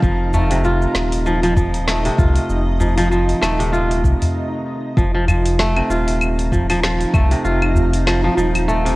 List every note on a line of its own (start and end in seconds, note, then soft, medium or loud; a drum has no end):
0.00 0.87 F1 medium
0.00 0.50 C3 medium
0.00 0.54 F3 medium
0.00 0.33 A3 loud
0.00 4.32 D#4 medium
0.00 0.61 F4 medium
0.00 4.31 D#5 medium
0.00 4.32 A#5 medium
0.00 kick loud
0.00 shaker soft
0.33 1.87 A3 medium
0.33 udu medium
0.33 shaker medium
0.51 2.04 C3 medium
0.51 open hi-hat medium
0.51 shaker soft
0.65 2.16 F4 medium
0.65 shaker soft
0.82 shaker soft
0.95 2.10 D#1 medium
0.95 snare medium
0.95 shaker medium
1.12 open hi-hat medium
1.12 shaker soft
1.26 1.42 F3 medium
1.26 shaker soft
1.43 1.56 F3 loud
1.43 open hi-hat soft
1.43 shaker soft
1.56 2.08 F3 medium
1.56 kick medium
1.56 udu medium
1.56 shaker medium
1.74 open hi-hat medium
1.74 shaker soft
1.88 3.41 A3 medium
1.88 snare medium
1.88 shaker soft
2.05 3.58 C3 medium
2.05 open hi-hat soft
2.18 2.39 C2 loud
2.18 3.70 F4 medium
2.18 kick medium
2.18 udu medium
2.18 shaker medium
2.36 open hi-hat medium
2.36 shaker soft
2.50 3.34 F1 medium
2.50 shaker soft
2.80 2.96 F3 medium
2.80 udu medium
2.80 shaker medium
2.98 3.10 F3 loud
2.98 open hi-hat medium
2.98 shaker soft
3.11 3.63 F3 medium
3.11 shaker soft
3.29 open hi-hat soft
3.29 shaker soft
3.42 4.03 D#1 medium
3.42 5.41 A3 loud
3.42 snare medium
3.42 claves medium
3.42 shaker medium
3.59 5.02 C3 medium
3.59 open hi-hat medium
3.59 shaker soft
3.73 5.24 F4 medium
3.73 shaker soft
3.91 open hi-hat soft
3.91 shaker soft
4.04 4.15 C2 medium
4.04 kick medium
4.04 shaker medium
4.22 open hi-hat medium
4.22 udu medium
4.22 shaker soft
4.97 5.81 F1 medium
4.97 5.13 F3 medium
4.97 8.96 D#4 medium
4.97 8.96 F4 medium
4.97 8.96 A#5 medium
4.97 kick loud
4.97 shaker soft
5.15 5.27 F3 medium
5.28 5.80 F3 medium
5.28 udu medium
5.28 claves medium
5.28 shaker medium
5.46 open hi-hat medium
5.46 shaker soft
5.59 7.13 A3 loud
5.59 snare loud
5.59 shaker soft
5.76 7.30 C3 medium
5.76 claves medium
5.90 7.05 D#1 medium
5.90 7.41 F4 medium
5.90 shaker medium
6.07 open hi-hat medium
6.07 shaker soft
6.21 claves medium
6.21 shaker soft
6.39 open hi-hat soft
6.52 6.68 F3 medium
6.52 kick medium
6.52 udu medium
6.52 shaker medium
6.69 6.82 F3 loud
6.69 open hi-hat medium
6.69 claves medium
6.69 shaker soft
6.83 7.34 F3 medium
6.83 snare loud
6.83 shaker soft
7.00 open hi-hat soft
7.13 7.34 C2 medium
7.13 8.68 A3 medium
7.13 kick loud
7.13 udu medium
7.13 claves medium
7.13 shaker medium
7.31 8.84 C3 medium
7.31 open hi-hat medium
7.31 shaker soft
7.44 8.29 F1 medium
7.44 8.96 F4 medium
7.44 shaker soft
7.62 claves medium
7.75 udu medium
7.75 shaker medium
7.93 open hi-hat medium
7.93 shaker soft
8.06 8.23 F3 medium
8.06 snare loud
8.06 claves medium
8.06 shaker soft
8.24 8.36 F3 loud
8.37 8.96 D#1 medium
8.37 8.89 F3 medium
8.37 shaker medium
8.55 open hi-hat medium
8.55 claves medium
8.55 shaker soft
8.68 8.96 A3 loud
8.68 shaker soft
8.85 8.96 C3 medium
8.85 open hi-hat soft